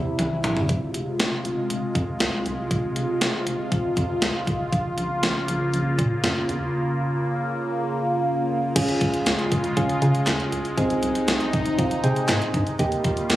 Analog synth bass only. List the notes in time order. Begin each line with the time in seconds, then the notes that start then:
0.19 C2
0.44 A#1
0.69 F1
0.94 F1
1.20 F1
1.45 F1
1.70 F1
1.95 F2
2.21 C#2
2.46 C2
2.71 F1
2.96 F1
3.21 F1
3.46 F1
3.72 F1
3.97 F2
4.22 C#2
4.47 C2
4.73 A#1
4.98 A#1
5.23 A#1
5.48 A#1
5.73 A#1
5.99 A#2
6.24 F2
6.49 E2
8.76 C#2
9.01 C#2
9.26 C#2
9.52 C#2
9.77 C#2
10.02 C#3
10.27 D#2
10.52 C#2
10.78 C2
11.03 C2
11.28 C2
11.53 C2
11.79 C2
12.04 C3
12.29 G#2
12.54 G2
12.79 D#2
13.05 D#2
13.30 D#2